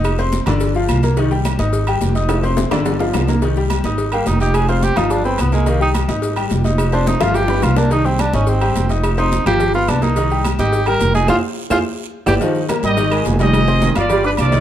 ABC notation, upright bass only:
X:1
M:4/4
L:1/8
Q:1/4=214
K:Cm
V:1 name="Upright bass" clef=bass
F,,,3 G,,,3 C,,2- | C,,3 A,,,3 F,,,2- | F,,,3 G,,,3 C,,2- | C,,3 A,,,3 F,,,2- |
F,,,3 G,,,3 C,,2- | C,,3 A,,,3 F,,,2- | F,,,3 G,,,3 C,,2- | C,,3 A,,,3 F,,,2- |
F,,,3 G,,,3 C,,2- | C,,3 A,,,3 F,,,2 | F,, z2 F,, z3 G,,, | z3 A,,,3 F,,,2- |
F,,,3 G,,,3 C,,2 |]